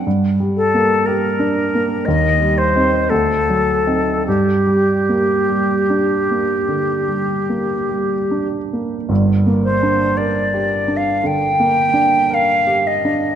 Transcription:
<<
  \new Staff \with { instrumentName = "Flute" } { \time 4/4 \key g \minor \tempo 4 = 55 r8 a'8 bes'4 ees''8 c''8 a'4 | g'2.~ g'8 r8 | r8 c''8 d''8. f''16 g''4 f''8 ees''8 | }
  \new Staff \with { instrumentName = "Grand piano" } { \time 4/4 \key g \minor \tuplet 3/2 { g,8 g8 bes8 g'8 d'8 bes8 ees,8 g8 <c' ees'>8 d,8 fis8 <c' ees'>8 } | \tuplet 3/2 { g,8 g8 bes8 g8 d'8 bes8 d8 g8 bes8 g8 d'8 bes8 } | \tuplet 3/2 { <g,, g,>8 bes8 d'8 bes'8 g'8 d'8 d8 bes8 d'8 bes'8 g'8 d'8 } | }
>>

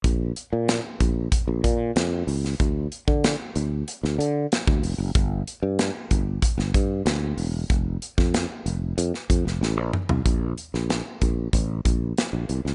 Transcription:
<<
  \new Staff \with { instrumentName = "Fretless electric bass" } { \clef bass \time 4/4 \key bes \major \tempo 4 = 94 bes,,8 r16 bes,8 r16 bes,,8 r16 bes,,16 bes,8 f,8 des,8 | d,8 r16 d8 r16 d,8 r16 d,16 d8 r16 d,16 f,,16 fis,,16 | g,,8 r16 g,8 r16 g,,8 r16 g,,16 g,8 d,8 e,,8 | f,,8 r16 f,8 r16 f,,8 f,16 r16 f,16 f,,16 a,,16 bes,,16 r16 c,16 |
bes,,8 r16 bes,,8 r16 bes,,8 a,,8 bes,,8 r16 bes,,16 c,16 des,16 | }
  \new DrumStaff \with { instrumentName = "Drums" } \drummode { \time 4/4 <hh bd>8 hh8 <hh sn>8 <hh bd>8 <hh bd>8 <hh bd>8 <hh sn>8 hho16 sn16 | <hh bd>8 hh16 bd16 <hh sn>8 hh8 hh16 sn16 hh8 <hh sn>16 bd16 hho8 | <hh bd>8 hh8 <hh sn>8 <hh bd>8 <hh bd>16 sn16 <hh bd>8 <hh sn>8 hho8 | <hh bd>8 hh16 <bd sn>16 <hh sn>8 hh8 hh16 sn16 <hh bd>16 sn16 sn8 toml16 tomfh16 |
<hh bd>8 hh16 sn16 <hh sn>8 <hh bd>8 <hh bd>8 <hh bd>8 <hh sn>8 hh16 sn16 | }
>>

